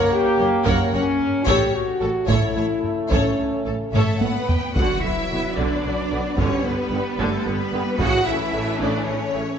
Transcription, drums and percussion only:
0.66 taiko
1.20 taiko low-mid
1.47 taiko
2.29 taiko
2.84 taiko low-mid
3.11 taiko
3.94 taiko low-mid
4.21 taiko high
4.49 taiko low
4.76 taiko
6.38 taiko
7.99 taiko

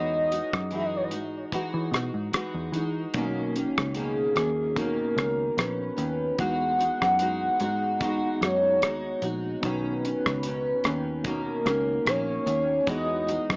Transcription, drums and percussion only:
0.32 closed hi-hat
0.53 kick, cross-stick
0.71 closed hi-hat
1.11 closed hi-hat
1.52 kick, closed hi-hat
1.93 cross-stick, closed hi-hat
2.33 cross-stick, closed hi-hat
2.73 closed hi-hat
3.14 kick, closed hi-hat
3.56 closed hi-hat
3.78 kick, cross-stick
3.94 closed hi-hat
4.36 cross-stick, closed hi-hat
4.76 kick, closed hi-hat
5.18 cross-stick, closed hi-hat
5.58 cross-stick, closed hi-hat
5.98 closed hi-hat
6.39 kick, closed hi-hat
6.80 closed hi-hat
7.02 kick, cross-stick
7.19 closed hi-hat
7.60 closed hi-hat
8.00 kick, closed hi-hat
8.42 cross-stick, closed hi-hat
8.82 cross-stick, closed hi-hat
9.22 closed hi-hat
9.63 kick, closed hi-hat
10.05 closed hi-hat
10.26 kick, cross-stick
10.43 closed hi-hat
10.84 cross-stick, closed hi-hat
11.25 kick, closed hi-hat
11.66 cross-stick, closed hi-hat
12.07 cross-stick, closed hi-hat
12.47 closed hi-hat
12.87 kick, closed hi-hat
13.29 closed hi-hat
13.50 kick, cross-stick

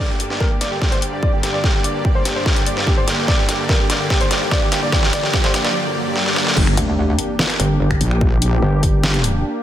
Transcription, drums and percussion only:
0.20 closed hi-hat
0.30 snare
0.40 kick
0.61 snare, closed hi-hat
0.82 kick, snare
0.92 closed hi-hat
1.02 closed hi-hat
1.23 kick
1.43 snare, closed hi-hat
1.64 kick, snare
1.84 closed hi-hat
2.05 kick
2.25 snare, closed hi-hat
2.46 kick, snare
2.56 closed hi-hat
2.66 closed hi-hat
2.77 snare
2.87 kick
3.08 snare, closed hi-hat
3.28 kick, snare
3.49 snare, closed hi-hat
3.69 kick, snare
3.90 snare, closed hi-hat
4.10 kick, snare
4.21 closed hi-hat
4.31 snare, closed hi-hat
4.51 kick, snare
4.72 snare, closed hi-hat
4.92 kick, snare
5.03 snare
5.13 snare, closed hi-hat
5.23 snare
5.33 kick, snare
5.44 snare
5.54 snare, closed hi-hat
5.65 snare
6.16 snare
6.26 snare
6.36 snare
6.47 snare
6.57 kick, crash
6.67 finger snap
6.77 closed hi-hat
7.19 closed hi-hat
7.39 snare
7.50 finger snap, closed hi-hat
7.60 closed hi-hat
7.91 finger snap, kick
8.01 closed hi-hat
8.11 finger snap
8.21 kick
8.42 closed hi-hat
8.83 kick, closed hi-hat
9.04 snare
9.14 finger snap, closed hi-hat
9.24 closed hi-hat

